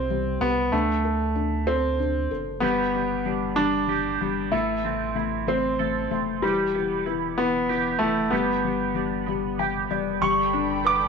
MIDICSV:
0, 0, Header, 1, 6, 480
1, 0, Start_track
1, 0, Tempo, 632244
1, 556, Time_signature, 6, 3, 24, 8
1, 8413, End_track
2, 0, Start_track
2, 0, Title_t, "String section"
2, 0, Program_c, 0, 48
2, 7767, Note_on_c, 0, 79, 61
2, 7770, Note_on_c, 0, 83, 79
2, 7772, Note_on_c, 0, 74, 61
2, 7773, Note_on_c, 0, 69, 73
2, 8413, Note_off_c, 0, 69, 0
2, 8413, Note_off_c, 0, 74, 0
2, 8413, Note_off_c, 0, 79, 0
2, 8413, Note_off_c, 0, 83, 0
2, 8413, End_track
3, 0, Start_track
3, 0, Title_t, "Clean electric guitar"
3, 0, Program_c, 1, 27
3, 1991, Note_on_c, 1, 55, 63
3, 1998, Note_on_c, 1, 67, 55
3, 2235, Note_on_c, 1, 59, 50
3, 2475, Note_on_c, 1, 62, 53
3, 2705, Note_off_c, 1, 59, 0
3, 2714, Note_on_c, 1, 59, 43
3, 2944, Note_off_c, 1, 67, 0
3, 2953, Note_on_c, 1, 67, 51
3, 3186, Note_off_c, 1, 59, 0
3, 3195, Note_on_c, 1, 59, 46
3, 3428, Note_off_c, 1, 55, 0
3, 3431, Note_on_c, 1, 52, 74
3, 3434, Note_off_c, 1, 67, 0
3, 3437, Note_on_c, 1, 69, 62
3, 3485, Note_off_c, 1, 59, 0
3, 3485, Note_off_c, 1, 62, 0
3, 3678, Note_on_c, 1, 60, 52
3, 3918, Note_on_c, 1, 64, 49
3, 4150, Note_off_c, 1, 60, 0
3, 4159, Note_on_c, 1, 60, 49
3, 4388, Note_off_c, 1, 69, 0
3, 4398, Note_on_c, 1, 69, 59
3, 4634, Note_off_c, 1, 60, 0
3, 4643, Note_on_c, 1, 60, 45
3, 4875, Note_off_c, 1, 52, 0
3, 4878, Note_off_c, 1, 69, 0
3, 4884, Note_on_c, 1, 55, 78
3, 4888, Note_on_c, 1, 67, 63
3, 4927, Note_off_c, 1, 64, 0
3, 4929, Note_off_c, 1, 60, 0
3, 5121, Note_on_c, 1, 59, 52
3, 5359, Note_on_c, 1, 64, 51
3, 5603, Note_off_c, 1, 59, 0
3, 5606, Note_on_c, 1, 59, 46
3, 5837, Note_off_c, 1, 67, 0
3, 5840, Note_on_c, 1, 67, 57
3, 6080, Note_off_c, 1, 59, 0
3, 6083, Note_on_c, 1, 59, 48
3, 6318, Note_off_c, 1, 59, 0
3, 6321, Note_on_c, 1, 59, 71
3, 6323, Note_off_c, 1, 67, 0
3, 6326, Note_on_c, 1, 67, 64
3, 6367, Note_off_c, 1, 64, 0
3, 6561, Note_off_c, 1, 59, 0
3, 6564, Note_on_c, 1, 59, 52
3, 6798, Note_on_c, 1, 62, 46
3, 7032, Note_off_c, 1, 59, 0
3, 7035, Note_on_c, 1, 59, 47
3, 7279, Note_off_c, 1, 67, 0
3, 7282, Note_on_c, 1, 67, 49
3, 7516, Note_off_c, 1, 59, 0
3, 7519, Note_on_c, 1, 59, 43
3, 7542, Note_off_c, 1, 55, 0
3, 7763, Note_on_c, 1, 55, 81
3, 7993, Note_off_c, 1, 62, 0
3, 7996, Note_on_c, 1, 62, 59
3, 8236, Note_off_c, 1, 59, 0
3, 8239, Note_on_c, 1, 59, 63
3, 8413, Note_off_c, 1, 55, 0
3, 8413, Note_off_c, 1, 59, 0
3, 8413, Note_off_c, 1, 62, 0
3, 8413, Note_off_c, 1, 67, 0
3, 8413, End_track
4, 0, Start_track
4, 0, Title_t, "Grand piano"
4, 0, Program_c, 2, 0
4, 0, Note_on_c, 2, 60, 73
4, 312, Note_on_c, 2, 59, 81
4, 322, Note_off_c, 2, 60, 0
4, 548, Note_on_c, 2, 57, 75
4, 561, Note_off_c, 2, 59, 0
4, 1268, Note_on_c, 2, 60, 86
4, 1294, Note_off_c, 2, 57, 0
4, 1783, Note_off_c, 2, 60, 0
4, 1977, Note_on_c, 2, 59, 82
4, 2703, Note_on_c, 2, 62, 85
4, 2730, Note_off_c, 2, 59, 0
4, 3400, Note_off_c, 2, 62, 0
4, 3429, Note_on_c, 2, 64, 84
4, 4163, Note_on_c, 2, 60, 79
4, 4176, Note_off_c, 2, 64, 0
4, 4671, Note_off_c, 2, 60, 0
4, 4877, Note_on_c, 2, 55, 78
4, 5328, Note_off_c, 2, 55, 0
4, 5600, Note_on_c, 2, 59, 83
4, 6063, Note_on_c, 2, 57, 78
4, 6094, Note_off_c, 2, 59, 0
4, 6305, Note_on_c, 2, 59, 75
4, 6319, Note_off_c, 2, 57, 0
4, 7481, Note_off_c, 2, 59, 0
4, 7757, Note_on_c, 2, 85, 80
4, 8249, Note_on_c, 2, 86, 90
4, 8252, Note_off_c, 2, 85, 0
4, 8413, Note_off_c, 2, 86, 0
4, 8413, End_track
5, 0, Start_track
5, 0, Title_t, "Felt piano"
5, 0, Program_c, 3, 0
5, 0, Control_c, 3, 64, 127
5, 0, Note_on_c, 3, 48, 56
5, 0, Note_on_c, 3, 64, 42
5, 0, Note_on_c, 3, 67, 47
5, 77, Note_on_c, 3, 55, 47
5, 298, Note_off_c, 3, 67, 0
5, 309, Note_on_c, 3, 67, 41
5, 525, Note_off_c, 3, 48, 0
5, 529, Note_off_c, 3, 64, 0
5, 542, Note_off_c, 3, 55, 0
5, 546, Note_off_c, 3, 67, 0
5, 553, Note_on_c, 3, 62, 60
5, 565, Control_c, 3, 64, 0
5, 676, Control_c, 3, 64, 127
5, 794, Note_on_c, 3, 69, 44
5, 1017, Note_off_c, 3, 62, 0
5, 1028, Note_on_c, 3, 62, 42
5, 1259, Note_off_c, 3, 69, 0
5, 1270, Note_on_c, 3, 69, 41
5, 1501, Note_off_c, 3, 62, 0
5, 1513, Note_on_c, 3, 62, 42
5, 1742, Note_off_c, 3, 69, 0
5, 1753, Note_on_c, 3, 69, 40
5, 1981, Note_off_c, 3, 62, 0
5, 1988, Note_off_c, 3, 69, 0
5, 1989, Note_on_c, 3, 55, 60
5, 2008, Control_c, 3, 64, 0
5, 2125, Control_c, 3, 64, 127
5, 2229, Note_off_c, 3, 55, 0
5, 2241, Note_on_c, 3, 55, 41
5, 2457, Note_off_c, 3, 55, 0
5, 2468, Note_on_c, 3, 55, 44
5, 2701, Note_off_c, 3, 55, 0
5, 2712, Note_on_c, 3, 55, 44
5, 2931, Note_off_c, 3, 55, 0
5, 2942, Note_on_c, 3, 55, 44
5, 3185, Note_off_c, 3, 55, 0
5, 3197, Note_on_c, 3, 55, 47
5, 3429, Note_on_c, 3, 57, 59
5, 3431, Note_off_c, 3, 55, 0
5, 3448, Control_c, 3, 64, 0
5, 3600, Control_c, 3, 64, 127
5, 3668, Note_off_c, 3, 57, 0
5, 3680, Note_on_c, 3, 57, 44
5, 3900, Note_off_c, 3, 57, 0
5, 3912, Note_on_c, 3, 57, 42
5, 4143, Note_off_c, 3, 57, 0
5, 4155, Note_on_c, 3, 57, 44
5, 4388, Note_off_c, 3, 57, 0
5, 4400, Note_on_c, 3, 57, 43
5, 4626, Note_off_c, 3, 57, 0
5, 4637, Note_on_c, 3, 57, 43
5, 4871, Note_off_c, 3, 57, 0
5, 4876, Note_on_c, 3, 52, 58
5, 4889, Control_c, 3, 64, 0
5, 5045, Control_c, 3, 64, 127
5, 5110, Note_off_c, 3, 52, 0
5, 5121, Note_on_c, 3, 52, 42
5, 5352, Note_off_c, 3, 52, 0
5, 5363, Note_on_c, 3, 52, 50
5, 5589, Note_off_c, 3, 52, 0
5, 5600, Note_on_c, 3, 52, 49
5, 5831, Note_off_c, 3, 52, 0
5, 5842, Note_on_c, 3, 52, 44
5, 6065, Note_off_c, 3, 52, 0
5, 6077, Note_on_c, 3, 52, 46
5, 6311, Note_off_c, 3, 52, 0
5, 6320, Note_on_c, 3, 55, 59
5, 6327, Control_c, 3, 64, 0
5, 6447, Control_c, 3, 64, 127
5, 6547, Note_off_c, 3, 55, 0
5, 6559, Note_on_c, 3, 55, 43
5, 6782, Note_off_c, 3, 55, 0
5, 6793, Note_on_c, 3, 55, 46
5, 7033, Note_off_c, 3, 55, 0
5, 7044, Note_on_c, 3, 55, 50
5, 7271, Note_off_c, 3, 55, 0
5, 7282, Note_on_c, 3, 55, 42
5, 7284, Note_on_c, 3, 79, 49
5, 7504, Note_off_c, 3, 79, 0
5, 7510, Note_off_c, 3, 55, 0
5, 7521, Note_on_c, 3, 55, 43
5, 7521, Note_on_c, 3, 74, 57
5, 7743, Note_off_c, 3, 74, 0
5, 7749, Note_off_c, 3, 55, 0
5, 7760, Note_on_c, 3, 55, 72
5, 7767, Control_c, 3, 64, 0
5, 7883, Control_c, 3, 64, 127
5, 7997, Note_on_c, 3, 62, 57
5, 8232, Note_on_c, 3, 71, 57
5, 8413, Note_off_c, 3, 55, 0
5, 8413, Note_off_c, 3, 62, 0
5, 8413, Note_off_c, 3, 71, 0
5, 8413, End_track
6, 0, Start_track
6, 0, Title_t, "Analog synth bass"
6, 0, Program_c, 4, 38
6, 0, Note_on_c, 4, 36, 94
6, 288, Note_off_c, 4, 36, 0
6, 312, Note_on_c, 4, 36, 87
6, 540, Note_off_c, 4, 36, 0
6, 550, Note_on_c, 4, 38, 101
6, 1724, Note_off_c, 4, 38, 0
6, 1759, Note_on_c, 4, 30, 91
6, 1984, Note_off_c, 4, 30, 0
6, 1998, Note_on_c, 4, 31, 106
6, 3168, Note_off_c, 4, 31, 0
6, 3198, Note_on_c, 4, 31, 88
6, 3424, Note_off_c, 4, 31, 0
6, 3439, Note_on_c, 4, 33, 92
6, 4609, Note_off_c, 4, 33, 0
6, 4635, Note_on_c, 4, 29, 87
6, 4863, Note_off_c, 4, 29, 0
6, 4874, Note_on_c, 4, 28, 104
6, 6046, Note_off_c, 4, 28, 0
6, 6083, Note_on_c, 4, 29, 80
6, 6307, Note_off_c, 4, 29, 0
6, 6321, Note_on_c, 4, 31, 104
6, 7489, Note_off_c, 4, 31, 0
6, 7521, Note_on_c, 4, 29, 84
6, 7745, Note_off_c, 4, 29, 0
6, 7759, Note_on_c, 4, 31, 117
6, 8413, Note_off_c, 4, 31, 0
6, 8413, End_track
0, 0, End_of_file